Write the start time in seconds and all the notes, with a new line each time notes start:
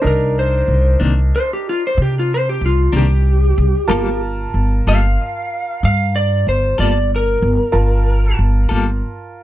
0.02 C2 D4 D#4 A#4
0.07 A#4
0.39 C5
0.68 C2
1.00 C2 C3 D#3 A#3 D4
1.36 C5
1.53 G4
1.69 F4
1.87 C5
1.97 C3
2.02 G4
2.19 F4
2.34 C5
2.49 G4
2.61 C2
2.66 F4
2.92 C2 C3 D#3 A#3 D4
2.97 G4
3.58 C2
3.88 G1 G3 A#3 F4 A4 A#4 A5
4.54 G1
4.87 G1 G3 A#3 F4 A4 F5
5.83 G2 F5
6.16 D5
6.47 G1 C5
6.78 G1 G3 A#3 F4 A4 D5
7.16 A#4
7.42 G1
7.72 G1 F4 A#4 A5
8.39 G1
8.69 G1 G3 A#3 F4 A4